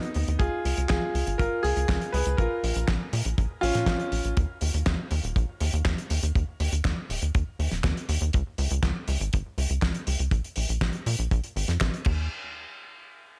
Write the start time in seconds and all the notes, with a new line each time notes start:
Already playing: B3 D#4
0.03 closed hi-hat
0.14 D#2, open hi-hat
0.28 D#2, closed hi-hat
0.39 C#2 F4 G#4, kick, closed hi-hat
0.65 C#2, open hi-hat
0.78 C#2, closed hi-hat
0.89 C#2 F4 G#4, kick, snare, clap, closed hi-hat
1.15 C#2, open hi-hat
1.27 G#1, closed hi-hat
1.38 G#1 F4 A#4, kick, closed hi-hat
1.63 C#2 F4 G#4, open hi-hat
1.77 C#2, closed hi-hat
1.89 C#2, kick, snare, clap, closed hi-hat
2.01 closed hi-hat
2.13 C#2 G#4 B4, open hi-hat
2.26 C#2, closed hi-hat
2.37 A#1 F4 A#4, kick, closed hi-hat
2.64 A#1, open hi-hat
2.76 A#1, closed hi-hat
2.88 A#1, kick, snare, clap, closed hi-hat
3.13 A#2, open hi-hat
3.25 A#1, closed hi-hat
3.38 A#1, kick, closed hi-hat
3.61 A#1 C#4 F4, open hi-hat
3.75 A#2, snare, closed hi-hat
3.86 A#1, kick, snare, clap, closed hi-hat
4.00 closed hi-hat
4.12 A#1, open hi-hat
4.25 A#1, closed hi-hat
4.37 D#2, kick, closed hi-hat
4.61 D#2, open hi-hat
4.74 D#2, closed hi-hat
4.86 D#2, kick, snare, clap, closed hi-hat
5.11 D#2, open hi-hat
5.24 D#1, closed hi-hat
5.36 A#1, kick, closed hi-hat
5.60 D#2, open hi-hat
5.73 D#2, closed hi-hat
5.85 D#2, kick, snare, clap, closed hi-hat
5.98 closed hi-hat
6.10 D#2, open hi-hat
6.23 D#2, closed hi-hat
6.35 D#2, kick, closed hi-hat
6.60 D#2, open hi-hat
6.72 D#2, closed hi-hat
6.85 D#2, kick, snare, clap, closed hi-hat
7.10 D#1, open hi-hat
7.22 D#2, closed hi-hat
7.35 D#2, kick, closed hi-hat
7.59 D#2, open hi-hat
7.71 D#1, snare, closed hi-hat
7.84 D#2, kick, snare, clap, closed hi-hat
7.97 closed hi-hat
8.09 D#2, open hi-hat
8.21 D#2, closed hi-hat
8.33 C#2, kick, closed hi-hat
8.58 C#2, open hi-hat
8.71 C#2, closed hi-hat
8.83 C#2, kick, snare, clap, closed hi-hat
9.08 C#2, open hi-hat
9.20 G#1, closed hi-hat
9.33 G#1, kick, closed hi-hat
9.58 C#2, open hi-hat
9.70 C#2, closed hi-hat
9.82 C#2, kick, snare, clap, closed hi-hat
9.95 closed hi-hat
10.07 C#2, open hi-hat
10.19 C#2, closed hi-hat
10.31 A#1, kick, closed hi-hat
10.44 closed hi-hat
10.56 A#1, open hi-hat
10.69 A#1, closed hi-hat
10.81 A#1, kick, snare, clap, closed hi-hat
10.93 closed hi-hat
11.06 A#2, open hi-hat
11.19 A#1, closed hi-hat
11.31 A#1, kick, closed hi-hat
11.44 closed hi-hat
11.56 G#1, open hi-hat
11.68 F2, snare, closed hi-hat
11.80 A#1, kick, snare, clap, closed hi-hat
11.94 closed hi-hat
12.05 D#2, kick, crash